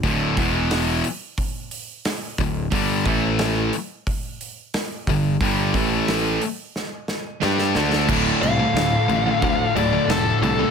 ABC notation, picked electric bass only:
X:1
M:4/4
L:1/8
Q:1/4=90
K:Dm
V:1 name="Picked electric bass" clef=bass
D,,, E,,,2 z4 D,,, | G,,, A,,,2 z4 G,,, | G,,, A,,,2 z3 G,, D,, | D,,, C,, D,,, A,,, D,, D,,, F,,, C,, |]